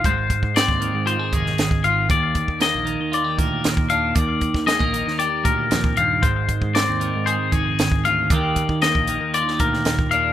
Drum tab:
HH |x-x-x-x-x-x-x-x-|x-x-x-x-x-x-x-x-|x-x-x-x-x-x-x-x-|x-x-x-x-x-x-x-x-|
SD |----o------oo---|----o-------o---|---oo--o----o---|----o-------o---|
BD |o-oo-o----o--o--|o-oo------o--o--|o-oo-o----o--o--|o-oo------o--o--|

HH |x-x-x-x-x-x-x-x-|
SD |----o----o-oo---|
BD |o-oo-o----o--o--|